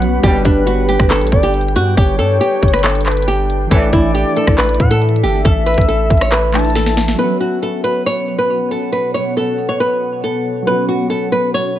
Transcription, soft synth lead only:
Already playing: F#5
0.23 B4
1.32 D5
1.97 C#5
3.06 B4
3.71 D5
4.80 F#5
5.45 E5
6.54 A5

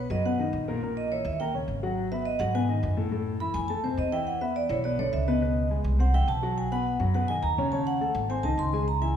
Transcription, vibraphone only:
0.11 D#5
0.26 F#5
0.97 D#5
1.12 C#5
1.26 E5
1.40 G5
2.12 E5
2.26 D#5
2.39 F#5
2.55 G#5
3.40 B5
3.54 G#5
3.68 A5
3.84 C5
3.99 D#5
4.12 G5
4.27 F#5
4.41 E5
4.56 D5
4.70 C#5
4.84 D5
4.99 C#5
5.13 E5
5.28 D#5
6.00 F#5
6.14 G5
6.29 A5
6.58 G#5
6.72 F#5
7.14 F#5
7.28 G#5
7.43 A#5
7.72 A5
7.87 F#5
8.30 G#5
8.43 A5
8.59 C6
8.88 A#5
9.02 G#5

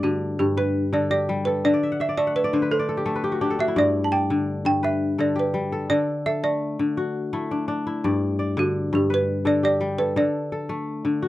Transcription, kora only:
Already playing: G2 A3 D4 E4 D5
0.04 D3
0.40 G2
0.57 B4
0.93 D3 A4
1.11 G4
1.29 G3
1.47 A4
1.65 D3 E5
1.74 D5
1.83 E5
1.92 F#5
2.00 E5
2.09 D5
2.17 A3 E5
2.27 F#5
2.36 E5
2.44 D5
2.53 D3 C5
2.62 B4
2.71 C5
2.79 D5
2.89 A4
2.97 G4
3.06 A3 A4
3.15 B4
3.24 G4
3.32 F#4
3.41 D4 G4
3.50 A4
3.59 F#4
3.68 E4
3.76 G2 D5
4.12 D5
4.30 D3
4.65 G2
4.83 B4
5.18 D3 A4
5.36 G4
5.54 G3
5.72 A4
5.90 D3 A4
6.26 A4
6.43 A3
6.79 D3
6.97 F#4
7.33 A3 E4
7.51 D4
7.68 D4
7.87 E4
8.04 G2 D5
8.39 D5
8.57 D3
8.93 G2
9.10 B4
9.45 D3 A4
9.63 G4
9.81 G3
9.99 A4
10.16 D3 A4
10.52 A4
10.69 A3
11.05 D3
11.22 F#4

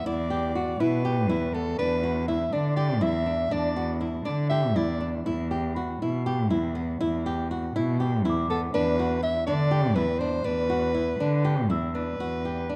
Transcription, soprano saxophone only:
0.07 D5
0.81 B4
1.54 A4
1.79 B4
2.28 E5
2.53 D5
2.76 D5
3.03 E5
3.53 D5
4.25 D5
4.50 E5
4.77 D5
8.50 A4
8.75 B4
9.23 E5
9.47 D5
9.96 B4
10.20 C5
10.46 B4
11.95 B4

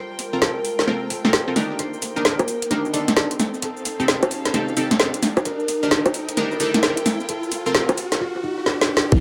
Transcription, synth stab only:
0.33 C4 F4 A4 A#4
0.42 C4 F4 A4 A#4
0.87 C4 F4 A4 A#4
1.25 C4 F4 A4 A#4
1.48 C4 F4 A4 A#4
1.56 D4 D#4 G4 A#4
2.16 D4 D#4 G4 A#4
2.25 D4 D#4 G4 A#4
2.71 D4 D#4 G4 A#4
2.93 D4 D#4 G4 A4
3.16 D4 D#4 G4 A#4
4.00 C4 D#4 G4 A4
4.08 C4 D#4 G4 A4
4.54 C4 D#4 G4 A4
4.77 C4 D#4 G4 A4
5.00 C4 D#4 G4 A4
5.83 D4 D#4 G4 A#4
5.91 D4 D#4 G4 A#4
6.37 D4 D#4 G4 A#4
6.60 D4 D#4 G4 A4
6.83 D4 D#4 G4 A#4
7.66 C4 F4 A4 A#4
7.75 C4 F4 A4 A#4
9.12 D4 D#4 G4 A#4

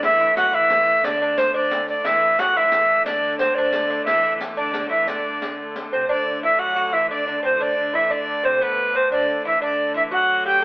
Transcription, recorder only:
0.04 E5
0.37 F#5
0.54 E5
1.04 D5
1.38 C5
1.55 D5
1.89 D5
2.06 E5
2.39 F#5
2.57 E5
3.06 D5
3.39 C5
3.54 D5
4.05 E5
4.57 D5
4.90 E5
5.08 D5
5.92 C5
6.09 D5
6.44 E5
6.59 F#5
6.93 E5
7.10 D5
7.45 C5
7.62 D5
7.95 E5
8.12 D5
8.45 C5
8.62 B4
8.96 C5
9.12 D5
9.47 E5
9.62 D5
9.96 E5
10.13 F#5
10.47 G5

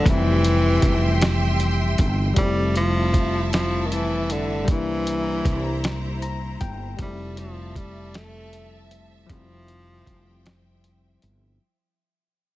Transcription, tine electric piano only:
0.03 E3 G3
0.07 C4 E4
2.34 G3 A3
2.38 C4 E4
4.65 G3 A#3
4.70 D4 E4
6.22 A#5
6.61 G5
6.97 G3 G#3
7.01 C4 E4
7.05 A3
9.27 F3 G3
9.32 C4 E4

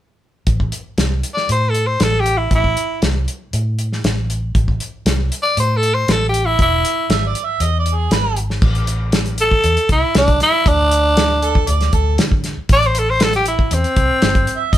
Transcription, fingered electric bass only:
0.47 A1
0.98 C2
1.49 A2
2.00 A1
2.51 A1
3.02 C2
3.53 A2
4.04 A1
4.55 A1
5.06 C2
5.57 A2
6.08 A1
6.59 E1
7.09 G#1
7.60 E2
8.11 G#1
8.62 A1
9.64 E2
9.89 C2
10.15 C2
10.66 D2
11.68 D2
11.93 D2
12.19 D3
12.57 muted fingered electric bass stroke
12.69 A1
13.71 E2
13.97 C2
14.22 G1
14.73 G2

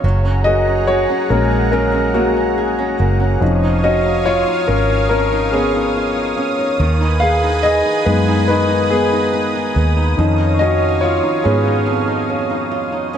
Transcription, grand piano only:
0.44 F#4 D#5
0.87 F#4 C#5
1.29 G#3 A#3 C#4 F#4 A#4
1.72 C#4 A#4
2.14 A#3 F#4
3.40 F3 C#4 D#4
3.84 F#4 D#5
4.26 F4 C#5
4.68 C#4 A#4
5.09 C#4 A#4
5.52 B3 G#4
7.20 G#4 F5
7.63 G#4 D#5
8.06 G#3 B3 D#4 B4
8.48 D#4 B4
8.90 B3 G#4
10.17 D#3 C#4 D#4
10.59 F#4 D#5
11.01 F4 C#5
11.44 B3 G#4

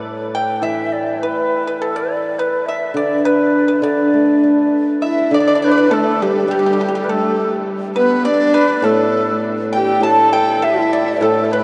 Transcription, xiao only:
0.35 G5
0.63 E5
0.92 D5
1.21 B4
1.78 A4 B4
1.96 D5
2.38 B4
2.65 E5
2.95 D5
3.25 B4
3.85 D5
5.07 E5
5.35 D5
5.64 B4
5.93 A4
6.22 G4
6.52 G4
7.03 B4
7.09 A4
7.98 B4
8.25 D5
8.54 B4
8.84 A4
9.73 G5
10.02 A5
10.32 G5
10.63 E5
10.92 D5
11.21 A4
11.44 D5
11.52 B4

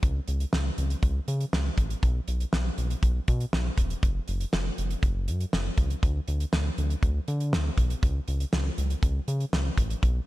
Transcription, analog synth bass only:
0.03 C#2
0.28 C#2
0.53 C#2
0.78 C#2
1.03 C#2
1.28 C#3
1.53 C#2
1.78 A1
2.03 B1
2.28 B1
2.53 B1
2.78 B1
3.03 B1
3.28 B2
3.53 B1
3.78 E1
4.03 F#1
4.28 F#1
4.53 F#1
4.78 F#1
5.03 F#1
5.28 F#2
5.53 F#1
5.78 C#2
6.03 D2
6.28 D2
6.53 D2
6.78 D2
7.03 D2
7.28 D3
7.53 D2
7.78 B1
8.03 C#2
8.28 C#2
8.53 C#2
8.78 C#2
9.03 C#2
9.28 C#3
9.53 C#2
9.78 A1
10.03 B1

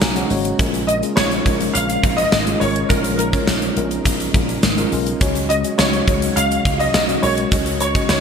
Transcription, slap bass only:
0.02 B1
0.30 G#1
0.59 A#1
1.17 A#1
1.46 A#1
1.75 A#1
2.04 A#1
2.32 G#1
2.61 G#1
2.90 A#1
3.48 A#1
3.77 A#1
4.05 A#1
4.34 A#1
4.63 G#1
4.92 B1
5.21 C#2
5.79 C#2
6.08 C#2
6.36 C#2
6.65 C#2
6.94 B1
7.23 B1
7.52 C#2
8.10 C#2

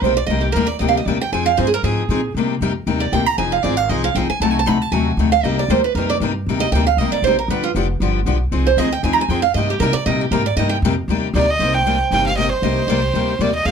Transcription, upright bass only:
0.02 B1
0.28 C2
0.55 D#2
0.80 D2
1.06 D#2
1.32 F2
1.58 G2
1.83 G#2
2.09 A#2
2.34 C3
2.61 F2
2.87 D#2
3.12 D2
3.38 F1
3.64 G#1
3.89 C2
4.15 A#1
4.29 muted upright bass stroke
4.40 C2
4.67 D2
4.92 D#2
5.17 D2
5.43 C2
5.68 D#2
5.95 F2
6.20 G2
6.46 D#2
6.72 D2
6.97 C2
7.11 muted upright bass stroke
7.22 A#1
7.48 G1
7.75 F1
8.00 G1
8.26 B1
8.52 C2
8.77 D2
9.03 D#2
9.28 F2
9.54 G2
9.80 C3
9.93 muted upright bass stroke
10.06 A#2
10.31 G#2
10.56 G2
10.82 F2
11.08 D#2
11.34 D2
11.59 C2
12.11 G1
12.62 C2
12.87 C2
13.14 D2
13.39 D#2
13.65 F2

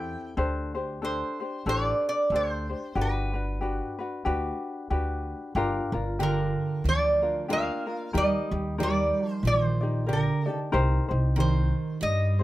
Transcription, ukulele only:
Already playing: C4 E4 G4 A4
0.37 D4 G4 A4 C5
0.75 D4 G4 C5
1.02 D4 G4 A4 C5
1.40 D4 G4 C5
1.66 D4 G4 A4 C5
2.32 D4 G4 A4 C5
2.69 D4 G4 C5
2.95 D4 F#4 G4 B4
3.33 D4 F#4 B4
3.61 D4 F#4 G4 B4
3.99 D4 F#4 B4
4.25 D4 F#4 G4 B4
4.90 D4 F#4 G4 B4
5.56 D4 F4 G4 A#4
5.93 D4 F4 A#4
6.19 D4 F4 G4 A#4
7.22 D4 F4 A#4
7.48 D4 F4 G4 A#4
7.87 D4 F4 A#4
8.13 D#4 G4 A#4
8.52 D#4 G4
8.78 D#4 G4 A#4 D5
9.81 D#4 G4 D5
10.06 G4 A#4 D5
10.46 D#4 G4 D5
10.72 D#4 G4 A#4 C5
11.08 D#4 G4 C5
11.36 D#4 G4 A#4 C5
12.39 G4 C5

